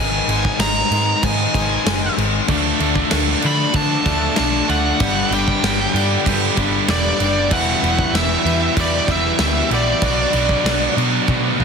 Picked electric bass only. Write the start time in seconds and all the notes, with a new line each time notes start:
Already playing: G#1
0.28 G#1
0.59 G#1
0.91 G#2
1.23 G#2
1.54 G#1
1.86 F#1
2.17 G#1
2.49 D2
2.80 D2
3.12 D2
3.44 D3
3.74 D3
4.06 D2
4.39 B1
4.69 D2
5.00 G1
5.30 G1
5.63 G1
5.94 G2
6.27 G2
6.57 G1
6.88 E1
7.20 F#1
7.52 E1
7.83 E1
8.13 E1
8.45 E2
8.77 E2
9.08 E1
9.39 D2
9.70 A#1
10.02 B1
10.33 B1
10.64 B1
10.97 B2
11.28 B2
11.59 B1